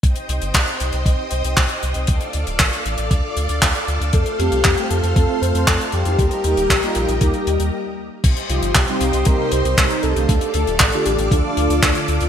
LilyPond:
<<
  \new Staff \with { instrumentName = "String machine" } { \time 4/4 \key c \dorian \tempo 4 = 117 << { <ees'' ees'''>1 | <d'' d'''>1 | <c'' c'''>1 | <bes' bes''>2. r4 |
<c'' c'''>1 | <d'' d'''>1 | } \\ { <c'' g''>1 | <a' f''>1~ | <a' f''>1 | <g' ees''>2. r4 |
<g' ees''>1 | <a' f''>1 | } >> }
  \new Staff \with { instrumentName = "Soft synth lead" } { \time 4/4 \key c \dorian r1 | r1 | a'8 g'4 a'8 a'8 c''8 a'8 g'8~ | g'2. r4 |
r8 f'8 g'4 bes'8 c''4 a'8~ | a'8 a'4 g'8 f'4. r8 | }
  \new Staff \with { instrumentName = "Analog polysynth" } { \time 4/4 \key c \dorian r1 | r1 | r8 <a c' f' a'>16 r8 <a c' f' g'>8 r16 <a c' f' a'>4 <a c' f' d''>8. <g bes ees' g'>16 | r8 <g bes ees' g'>16 r8 <g bes ees' f'>8 r16 <g bes ees' g'>4 r4 |
r8 <c g c' ees' g'>16 r8 <c g c' ees' f'>8 r16 <c g c' ees' g'>4 <c g c' ees' bes'>8. <d a d' f' a'>16 | r8 <d a d' f' a'>16 r8 <d a d' f' g'>8 r16 <d a d' f' a'>4 <d a d' f' d''>8. <a c' f' a'>16 | }
  \new Staff \with { instrumentName = "Analog synth bass" } { \clef bass \time 4/4 \key c \dorian c,16 r16 c,16 g,,16 c,16 r16 c,16 c,16 c,16 r16 c,16 c,16 c,16 r16 c,16 c,16 | d,16 r16 d,16 d,,16 a,,16 r16 a,,16 a,,16 d,16 r16 d,16 d,16 d,16 r16 d,16 d,16 | f,16 r16 f,16 c,16 f,16 r16 f,16 f,16 f,16 r16 f,16 f,16 f,16 r16 f,16 f,16 | ees,16 r16 ees,16 ees,,16 bes,,16 r16 bes,,16 bes,,16 ees,16 r16 ees,16 ees,16 r4 |
c,16 r16 c,16 g,,16 c,16 r16 c,16 c,16 c,16 r16 c,16 c,16 c,16 r16 c,16 c,16 | d,16 r16 d,16 d,,16 a,,16 r16 a,,16 a,,16 d,16 r16 d,16 d,16 d,16 r16 d,16 d,16 | }
  \new DrumStaff \with { instrumentName = "Drums" } \drummode { \time 4/4 <hh bd>16 hh16 hh16 hh16 <hc hh bd>16 hh16 hh16 hh16 <hh bd>8 hh16 hh16 <hc hh bd>16 hh16 hh16 hh16 | <hh bd>16 hh16 hh16 hh16 <hc hh bd>16 hh16 hh16 hh16 <hh bd>8 hh16 hh16 <hc hh bd>16 hh16 hh16 hh16 | <hh bd>16 hh16 hh16 hh16 <hc hh bd>16 hh16 hh16 hh16 <hh bd>8 hh16 hh16 <hc hh bd>16 hh16 hh16 hh16 | <hh bd>16 hh16 hh16 hh16 <hc hh bd>16 hh16 hh16 hh16 <hh bd>16 hh16 hh16 hh16 r4 |
<cymc hh bd>16 hh16 hh16 hh16 <hc hh bd>16 hh16 hh16 hh16 <hh bd>8 hh16 hh16 <hc hh bd>16 hh16 hh16 hh16 | <hh bd>16 hh16 hh16 hh16 <hc hh bd>16 hh16 hh16 hh16 <hh bd>8 hh16 hh16 <hc hh bd>16 hh16 hh16 hh16 | }
>>